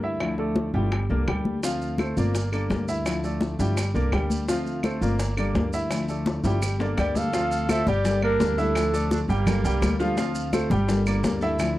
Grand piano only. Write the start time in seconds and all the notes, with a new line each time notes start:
0.03 E4 E5
0.39 A3 A4 D5
0.74 G3 G4 G5
1.10 A#3 A#4 D5
1.28 G3 G4 G5
1.63 F3 F4 F5
1.99 A3 A4 C5
2.17 A#3 A#4 D5
2.53 A#3 D5
2.89 E4 E5
3.24 A3 A4 D5
3.60 G3 G4 G5
3.95 A#3 A#4 D5
4.13 G3 G4 G5
4.49 F3 F4 F5
4.84 A3 A4 C5
5.02 A#3 A#4 D5
5.38 A#3 D5
5.74 E4 E5
6.09 A3 A4 D5
6.45 G3 G4 G5
6.81 A#3 A#4 D5
6.98 G3 G4 G5
7.34 F3 F4 F5
7.70 A3 A4 C5
7.87 G3 G4 G5
8.23 A#3 D5
8.58 E4 E5
8.93 A3 A4 D5
9.29 G3 G4 G5
9.64 G3 G4 G5
10.00 F3 F4 F5
10.17 F3 F4 F5
10.53 A3 A4 C5
10.71 G3 G4 G5
11.07 A#3 D5
11.42 E4 E5